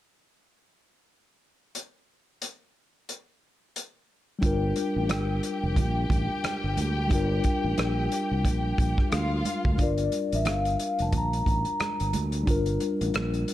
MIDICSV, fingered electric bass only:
0, 0, Header, 1, 2, 480
1, 0, Start_track
1, 0, Key_signature, -2, "minor"
1, 0, Tempo, 670391
1, 1251, Time_signature, 4, 2, 24, 8
1, 9693, End_track
2, 0, Start_track
2, 0, Title_t, "Fingered electric bass"
2, 0, Program_c, 0, 33
2, 3173, Note_on_c, 0, 31, 95
2, 3376, Note_off_c, 0, 31, 0
2, 3553, Note_on_c, 0, 33, 73
2, 3637, Note_off_c, 0, 33, 0
2, 3656, Note_on_c, 0, 31, 64
2, 3858, Note_off_c, 0, 31, 0
2, 4034, Note_on_c, 0, 29, 72
2, 4117, Note_off_c, 0, 29, 0
2, 4130, Note_on_c, 0, 34, 91
2, 4335, Note_off_c, 0, 34, 0
2, 4372, Note_on_c, 0, 33, 78
2, 4490, Note_off_c, 0, 33, 0
2, 4754, Note_on_c, 0, 31, 80
2, 4837, Note_off_c, 0, 31, 0
2, 4855, Note_on_c, 0, 38, 72
2, 5090, Note_on_c, 0, 31, 101
2, 5101, Note_off_c, 0, 38, 0
2, 5295, Note_off_c, 0, 31, 0
2, 5472, Note_on_c, 0, 33, 80
2, 5557, Note_off_c, 0, 33, 0
2, 5574, Note_on_c, 0, 34, 78
2, 5777, Note_off_c, 0, 34, 0
2, 5953, Note_on_c, 0, 36, 68
2, 6050, Note_off_c, 0, 36, 0
2, 6050, Note_on_c, 0, 34, 89
2, 6255, Note_off_c, 0, 34, 0
2, 6291, Note_on_c, 0, 34, 67
2, 6409, Note_off_c, 0, 34, 0
2, 6535, Note_on_c, 0, 38, 81
2, 6739, Note_off_c, 0, 38, 0
2, 6913, Note_on_c, 0, 38, 73
2, 6998, Note_off_c, 0, 38, 0
2, 7012, Note_on_c, 0, 31, 86
2, 7217, Note_off_c, 0, 31, 0
2, 7394, Note_on_c, 0, 33, 65
2, 7497, Note_off_c, 0, 33, 0
2, 7497, Note_on_c, 0, 31, 75
2, 7700, Note_off_c, 0, 31, 0
2, 7876, Note_on_c, 0, 29, 74
2, 7960, Note_off_c, 0, 29, 0
2, 7969, Note_on_c, 0, 34, 80
2, 8176, Note_off_c, 0, 34, 0
2, 8210, Note_on_c, 0, 33, 78
2, 8330, Note_off_c, 0, 33, 0
2, 8597, Note_on_c, 0, 31, 79
2, 8682, Note_off_c, 0, 31, 0
2, 8699, Note_on_c, 0, 38, 77
2, 8902, Note_off_c, 0, 38, 0
2, 8934, Note_on_c, 0, 31, 89
2, 9140, Note_off_c, 0, 31, 0
2, 9316, Note_on_c, 0, 33, 71
2, 9401, Note_off_c, 0, 33, 0
2, 9416, Note_on_c, 0, 34, 69
2, 9621, Note_off_c, 0, 34, 0
2, 9693, End_track
0, 0, End_of_file